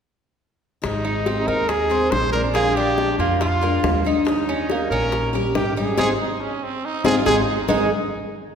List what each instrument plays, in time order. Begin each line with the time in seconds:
0.82 upright bass G#1, steel-string acoustic guitar D#3 G#3 C4 G#4, trumpet D#4, high bongo
1.05 cuban tres D#4
1.26 cuban tres C4, high bongo
1.48 upright bass D#2, cuban tres D#4, trumpet A#4
1.69 trumpet G#4, muted steel-string acoustic guitar stroke, high bongo
1.90 steel-string acoustic guitar G#3 C4 G#4, cuban tres C5
2.11 upright bass A#1, steel-string acoustic guitar D#3 G#3 C4 G#4, trumpet C5, high bongo, low bongo
2.32 steel-string acoustic guitar G#3 C4 G#4, cuban tres D4, trumpet A#4
2.54 steel-string acoustic guitar F3 G#3 D4 F4, cuban tres A#3, trumpet G#4, high bongo
2.76 cuban tres D4, trumpet G4, high bongo
2.98 high bongo
3.19 upright bass F2, cuban tres A#3, trumpet F4, high bongo
3.40 trumpet F4, cuban tres F4, muted steel-string acoustic guitar stroke, high bongo
3.61 steel-string acoustic guitar G#3 D4 F4, cuban tres A#3, high bongo
3.84 upright bass D#2, steel-string acoustic guitar F3 G#3 D4 F4, high bongo, low bongo
4.04 steel-string acoustic guitar G#3 D4 F4, cuban tres D#4
4.25 steel-string acoustic guitar D#3 G3 C#4 G4, trumpet D#4, high bongo
4.49 cuban tres C#4
4.70 cuban tres A#3, high bongo
4.91 upright bass A#1, cuban tres C#4, trumpet A#4
5.12 muted steel-string acoustic guitar stroke, high bongo
5.33 steel-string acoustic guitar G3 C#4 G4, cuban tres A#4
5.55 upright bass G#1, steel-string acoustic guitar D#3 G3 C#4 G4, trumpet G4, high bongo, low bongo
5.76 steel-string acoustic guitar G3 C#4 G4, cuban tres D#4, trumpet G#4
5.97 upright bass G#1, steel-string acoustic guitar G#3 C4 D#4, cuban tres G#3 C4 D#4, trumpet G#4, high bongo
6.20 trumpet D#4
6.40 trumpet C#4
6.64 trumpet C4
6.85 trumpet D#4
7.04 upright bass G#1, steel-string acoustic guitar G#3 C4 D#4, cuban tres G#3 C4 D#4, trumpet F4 G#4, high bongo
7.26 upright bass G#1, steel-string acoustic guitar G#3 C4 D#4, cuban tres G#3 C4 D#4, trumpet D#4 G#4, high bongo
7.68 upright bass G#1, steel-string acoustic guitar G#2 D#3 G#3 C4 D#4 G#4, cuban tres G#3 D#4 G#4, trumpet D#4 G#4, low bongo